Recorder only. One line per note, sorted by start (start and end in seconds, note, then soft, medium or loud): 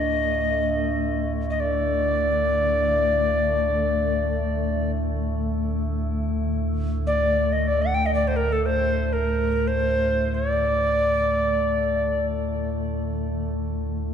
0.00 1.31 D#5 medium
1.50 1.62 D#5 soft
1.60 4.91 D5 medium
7.07 7.54 D5 medium
7.52 7.69 D#5 medium
7.68 7.84 D5 medium
7.82 7.96 F#5 medium
7.94 8.07 G5 medium
8.06 8.14 D#5 medium
8.14 8.29 D5 medium
8.28 8.38 C5 medium
8.36 8.54 A#4 medium
8.52 8.67 A4 medium
8.66 9.14 C5 medium
9.13 9.69 A#4 medium
9.67 10.36 C5 medium
10.34 12.26 D5 medium